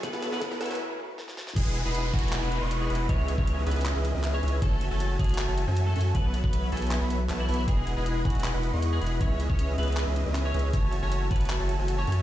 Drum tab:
CC |--------------------------------|x-------------------------------|--------------------------------|--------------------------------|
HH |x---x---x---xxxx----------------|x---x---x---xxxxx---x---x---xx--|x---x---x---xxxxx---x---x---xx--|x---x---x---xxxxx---x---x---xx--|
CP |--------------------------------|----------------x---------------|----------------x-------x-------|----------------x---------------|
SD |o-o-o-o-o-o-o-o---------o-o-o-o-|--------------------------------|--------------------------------|--------------------------------|
BD |o-------o-----------------------|o-----------o-------------------|o-----o-------------------------|o-----------o-------------------|

CC |--------------------------------|--------------------------------|--------------------------------|--------------------------------|
HH |x---x---x---xxxxx---x---x---ox--|x---x---x---xxxxx---x---x---xx--|x---x---x---xxxxx---x---x---xx--|x---x---x---xxxxx---x---x---xx--|
CP |----------------x-------x-------|----------------x---------------|----------------x-------x-------|----------------x---------------|
SD |--------------------------------|--------------------------------|--------------------------------|--------------------------------|
BD |o-----o-------------------------|o-----------o-------------------|o-----o-------------------------|o-----------o-------------------|